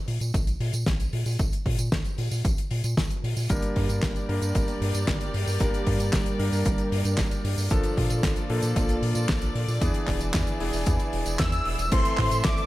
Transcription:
0.08 analog synth bass A#2, open hi-hat
0.20 analog synth bass A#2, closed hi-hat, tambourine
0.34 analog synth bass A#1, kick, closed hi-hat, tambourine
0.47 closed hi-hat, tambourine
0.60 analog synth bass A#2, open hi-hat
0.73 analog synth bass A#2, closed hi-hat, tambourine
0.86 analog synth bass A#1, kick, snare, closed hi-hat, tambourine
1.00 closed hi-hat, tambourine
1.13 analog synth bass A#2, open hi-hat
1.26 analog synth bass A#2, tambourine
1.39 analog synth bass A#1, kick, closed hi-hat, tambourine
1.52 closed hi-hat, tambourine
1.66 analog synth bass A#2, kick, open hi-hat
1.78 analog synth bass A#2, closed hi-hat, tambourine
1.92 analog synth bass A#1, kick, snare, closed hi-hat, tambourine
2.05 closed hi-hat, tambourine
2.18 analog synth bass A#2, open hi-hat
2.31 analog synth bass A#2, open hi-hat, tambourine
2.45 analog synth bass A#1, kick, closed hi-hat, tambourine
2.57 closed hi-hat, tambourine
2.71 analog synth bass A#2, open hi-hat
2.84 analog synth bass A#2, closed hi-hat, tambourine
2.97 analog synth bass A#1, kick, snare, closed hi-hat, tambourine
3.10 closed hi-hat, tambourine
3.24 analog synth bass A#2, open hi-hat
3.37 analog synth bass A#2, tambourine
3.49 analog synth bass G1, electric grand piano G3 A#3 D4 A#4, string section G3 G4 A#4 D5, kick, closed hi-hat, tambourine
3.62 closed hi-hat, tambourine
3.76 analog synth bass G2, kick, open hi-hat
3.89 analog synth bass G2, closed hi-hat, tambourine
4.02 analog synth bass G1, kick, snare, clap, closed hi-hat, tambourine
4.16 closed hi-hat, tambourine
4.29 analog synth bass G2, electric grand piano G3 A#3 D4 A#4, open hi-hat
4.42 analog synth bass G2, closed hi-hat, tambourine
4.55 analog synth bass G1, kick, closed hi-hat, tambourine
4.68 closed hi-hat, tambourine
4.81 analog synth bass G2, open hi-hat
4.94 analog synth bass G2, closed hi-hat, tambourine
5.08 analog synth bass G1, kick, snare, clap, closed hi-hat
5.21 closed hi-hat, tambourine
5.34 analog synth bass G2, open hi-hat
5.47 analog synth bass G2, tambourine
5.60 analog synth bass G1, electric grand piano G3 A#3 D4 A#4, kick, closed hi-hat, tambourine
5.74 closed hi-hat, tambourine
5.86 analog synth bass G2, kick, open hi-hat
6.00 analog synth bass G2, closed hi-hat, tambourine
6.13 analog synth bass G1, kick, snare, clap, closed hi-hat, tambourine
6.26 closed hi-hat, tambourine
6.39 analog synth bass G2, electric grand piano G3 A#3 D4 A#4, open hi-hat
6.53 analog synth bass G2, open hi-hat, tambourine
6.65 analog synth bass G1, kick, closed hi-hat, tambourine
6.78 closed hi-hat, tambourine
6.92 analog synth bass G2, open hi-hat
7.04 analog synth bass G2, closed hi-hat, tambourine
7.18 analog synth bass G1, kick, snare, clap, closed hi-hat, tambourine
7.31 closed hi-hat, tambourine
7.44 analog synth bass G2, open hi-hat
7.58 analog synth bass G2, tambourine
7.70 analog synth bass A#1, electric grand piano F3 A#3 D4 A4, string section A#3 F4 A4 D5, kick, closed hi-hat, tambourine
7.83 closed hi-hat, tambourine
7.97 analog synth bass A#2, kick, open hi-hat
8.10 analog synth bass A#2, closed hi-hat, tambourine
8.23 analog synth bass A#1, kick, snare, clap, closed hi-hat, tambourine
8.36 closed hi-hat, tambourine
8.50 analog synth bass A#2, electric grand piano F3 A#3 D4 A4, open hi-hat
8.62 analog synth bass A#2, closed hi-hat, tambourine
8.76 analog synth bass A#1, kick, closed hi-hat, tambourine
8.89 closed hi-hat, tambourine
9.02 analog synth bass A#2, open hi-hat
9.15 analog synth bass A#2, closed hi-hat, tambourine
9.28 analog synth bass A#1, kick, snare, clap, closed hi-hat
9.41 closed hi-hat, tambourine
9.55 analog synth bass A#2, open hi-hat
9.68 analog synth bass A#2, tambourine
9.81 analog synth bass E2, string section E3 E4 G#4, electric grand piano E3 B3 D4 G#4, kick, closed hi-hat, tambourine
9.94 closed hi-hat, tambourine
10.07 analog synth bass E1, kick, clap, open hi-hat
10.21 analog synth bass E1, closed hi-hat, tambourine
10.34 analog synth bass E2, kick, snare, clap, closed hi-hat, tambourine
10.47 closed hi-hat, tambourine
10.60 analog synth bass E1, electric grand piano E3 B3 D4 G#4, open hi-hat
10.73 analog synth bass E1, open hi-hat, tambourine
10.86 analog synth bass E2, kick, closed hi-hat, tambourine
10.99 closed hi-hat, tambourine
11.13 analog synth bass E1, open hi-hat
11.26 analog synth bass E1, closed hi-hat, tambourine
11.39 analog synth bass E2, analog synth lead E6, kick, snare, clap, closed hi-hat, tambourine
11.52 closed hi-hat, tambourine
11.65 analog synth bass E1, open hi-hat
11.79 analog synth bass E1, closed hi-hat, tambourine
11.91 analog synth bass A1, electric grand piano E3 A3 C4 A4, string section A3 A4 C5 E5, analog synth lead C6, kick, closed hi-hat, crash, tambourine
12.05 closed hi-hat, tambourine
12.17 analog synth bass A2, kick, clap, open hi-hat
12.31 analog synth bass A2, closed hi-hat, tambourine
12.45 analog synth bass A1, analog synth lead D6, kick, snare, clap, closed hi-hat
12.57 closed hi-hat, tambourine

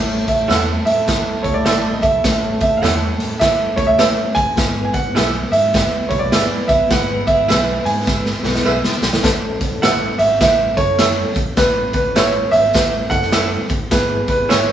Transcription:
Already playing: fingered electric bass A1, horn section C#3 A3 E4 A4, reed electric piano A3 C#4 E4 C#5, grand piano E5
0.27 fingered electric bass A1, grand piano E5, kick, closed hi-hat, tambourine
0.48 fingered electric bass E2, clean electric guitar E4 A4 C#5 E5, grand piano F#5, snare, closed hi-hat, tambourine
0.85 fingered electric bass A2, grand piano E5, closed hi-hat, tambourine
1.08 kick, snare, closed hi-hat, tambourine
1.43 fingered electric bass C#2, reed electric piano C#3 A3 E4 E5, grand piano C#5, kick, closed hi-hat, tambourine
1.54 fingered electric bass C#2, grand piano D5
1.65 fingered electric bass A1, clean electric guitar E4 A4 C#5 E5, snare, closed hi-hat, tambourine
1.93 grand piano D#5
2.02 grand piano E5, kick, closed hi-hat, tambourine
2.13 fingered electric bass B1
2.23 fingered electric bass A1, reed electric piano A3 C#4 E4 C#5, kick, snare, closed hi-hat, tambourine
2.60 fingered electric bass A1, grand piano E5, kick, closed hi-hat, tambourine
2.77 grand piano F5
2.82 fingered electric bass E2, clean electric guitar E4 A4 C#5 E5, grand piano F#5, snare, closed hi-hat, tambourine
3.18 fingered electric bass A2, closed hi-hat, tambourine
3.40 grand piano E5, kick, snare, closed hi-hat, tambourine
3.76 fingered electric bass C#2, reed electric piano A3 C#4 E4 C#5, grand piano C#5, kick, closed hi-hat, tambourine
3.87 fingered electric bass C#2, grand piano E5
3.99 fingered electric bass A1, clean electric guitar E4 A4 C#5 E5, snare, closed hi-hat, tambourine
4.35 fingered electric bass A#1, grand piano G#5, kick, closed hi-hat, tambourine
4.46 fingered electric bass A1
4.56 fingered electric bass G#1, reed electric piano G#3 B3 E4 B4, kick, snare, closed hi-hat, tambourine
4.85 grand piano G#5
4.93 fingered electric bass G#1, grand piano F#5, kick, closed hi-hat, tambourine
5.15 fingered electric bass B1, clean electric guitar E4 G#4 B4 E5, snare, closed hi-hat, tambourine
5.52 fingered electric bass G#2, grand piano E5, closed hi-hat, tambourine
5.73 horn section B3 E4 G#4 B4, kick, snare, closed hi-hat, tambourine
6.09 fingered electric bass B1, reed electric piano G#3 B3 E4 B4, grand piano C#5, kick, closed hi-hat, tambourine
6.19 fingered electric bass B1, grand piano D5
6.32 fingered electric bass G#1, clean electric guitar E4 G#4 B4 E5, snare, closed hi-hat, tambourine
6.68 fingered electric bass A#1, grand piano E5, kick, closed hi-hat, tambourine
6.80 fingered electric bass A1
6.89 fingered electric bass G#1, reed electric piano G#3 B3 E4 B4, grand piano F#5, kick, snare, closed hi-hat, tambourine
7.27 fingered electric bass G#1, grand piano E5, kick, closed hi-hat, tambourine
7.48 fingered electric bass B1, clean electric guitar E4 G#4 B4 E5, snare, closed hi-hat, tambourine
7.85 fingered electric bass G#2, grand piano G#5, closed hi-hat, tambourine
8.07 kick, snare, tambourine
8.26 snare
8.43 fingered electric bass B1, reed electric piano G#3 B3 E4 B4, snare, tambourine
8.56 snare
8.65 fingered electric bass B1, clean electric guitar E4 G#4 B4 E5, tambourine
8.84 snare
9.02 fingered electric bass B1, snare, tambourine
9.13 fingered electric bass A#1, snare
9.23 fingered electric bass A1, reed electric piano C#4 E4 A4, kick, snare, closed hi-hat, tambourine
9.61 kick, closed hi-hat, tambourine
9.71 fingered electric bass A1
9.82 clean electric guitar E4 A4 C#5 E5, grand piano F#5, snare, closed hi-hat, tambourine
10.19 fingered electric bass G#1, grand piano E5, closed hi-hat, tambourine
10.41 fingered electric bass A1, grand piano E5, kick, snare, closed hi-hat, tambourine
10.76 fingered electric bass F#1, reed electric piano C#4 E4 A4, grand piano C#5, kick, closed hi-hat, tambourine
10.99 clean electric guitar E4 A4 C#5 E5, snare, closed hi-hat, tambourine
11.35 fingered electric bass A#1, kick, closed hi-hat, tambourine
11.56 fingered electric bass A1, reed electric piano C#4 E4 B4, grand piano B4, kick, snare, closed hi-hat, tambourine
11.93 grand piano B4, kick, closed hi-hat, tambourine
12.05 fingered electric bass A1
12.16 clean electric guitar E4 A4 C#5 E5, grand piano C#5, snare, closed hi-hat, tambourine
12.51 fingered electric bass G#1, grand piano E5, closed hi-hat, tambourine
12.73 fingered electric bass A1, kick, snare, closed hi-hat, tambourine
13.10 fingered electric bass F#1, reed electric piano C#4 E4 A4, grand piano F#5, kick, closed hi-hat, tambourine
13.22 snare
13.32 clean electric guitar E4 A4 C#5 E5, snare, closed hi-hat, tambourine
13.69 fingered electric bass A1, kick, closed hi-hat, tambourine
13.91 fingered electric bass G#1, reed electric piano B3 E4 G#4, grand piano B4, kick, snare, closed hi-hat, tambourine
14.28 grand piano B4, kick, closed hi-hat, tambourine
14.39 fingered electric bass G#1
14.49 clean electric guitar E4 G#4 B4 E5, grand piano C#5, snare, closed hi-hat, tambourine

